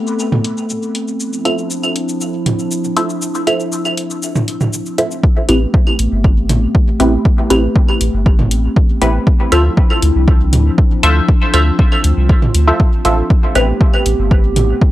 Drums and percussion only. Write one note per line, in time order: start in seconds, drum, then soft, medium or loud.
0.07 shaker soft
0.19 shaker medium
0.32 mid tom medium
0.44 closed hi-hat medium
0.57 shaker soft
0.70 shaker medium
0.83 shaker soft
0.95 closed hi-hat medium
1.08 shaker soft
1.20 shaker medium
1.33 shaker soft
1.45 closed hi-hat medium
1.45 claves medium
1.58 shaker soft
1.71 shaker medium
1.83 claves medium
1.83 shaker soft
1.96 closed hi-hat medium
2.09 shaker soft
2.21 shaker medium
2.46 closed hi-hat medium
2.46 mid tom medium
2.59 shaker soft
2.71 shaker medium
2.84 shaker soft
2.97 closed hi-hat medium
3.10 shaker soft
3.22 shaker medium
3.35 shaker soft
3.47 closed hi-hat medium
3.47 claves medium
3.60 shaker soft
3.72 shaker medium
3.85 claves medium
3.85 shaker soft
3.97 closed hi-hat medium
4.10 shaker soft
4.23 shaker medium
4.36 mid tom medium
4.36 shaker soft
4.48 closed hi-hat medium
4.61 mid tom medium
4.61 shaker soft
4.73 shaker medium
4.86 shaker soft
4.98 closed hi-hat medium
5.11 shaker soft
5.24 kick loud
5.49 closed hi-hat medium
5.49 claves medium
5.74 kick loud
5.87 claves medium
5.99 closed hi-hat medium
6.24 kick loud
6.49 closed hi-hat medium
6.49 mid tom medium
6.75 kick loud
7.00 closed hi-hat medium
7.25 kick loud
7.50 closed hi-hat medium
7.50 claves medium
7.76 kick loud
7.89 claves medium
8.01 closed hi-hat medium
8.26 kick loud
8.39 mid tom loud
8.51 closed hi-hat medium
8.76 kick loud
9.02 closed hi-hat medium
9.27 kick loud
9.52 closed hi-hat medium
9.52 claves medium
9.77 kick loud
9.90 claves medium
10.02 closed hi-hat medium
10.28 kick loud
10.53 closed hi-hat medium
10.53 mid tom medium
10.78 kick loud
11.03 closed hi-hat medium
11.29 kick loud
11.54 closed hi-hat medium
11.54 claves medium
11.79 kick loud
11.92 claves medium
12.04 closed hi-hat medium
12.29 kick loud
12.42 mid tom medium
12.55 closed hi-hat medium
12.80 kick loud
13.05 closed hi-hat medium
13.30 kick loud
13.55 closed hi-hat medium
13.55 claves medium
13.81 kick loud
13.94 claves medium
14.06 closed hi-hat medium
14.31 kick loud
14.56 closed hi-hat medium
14.56 mid tom medium
14.81 kick loud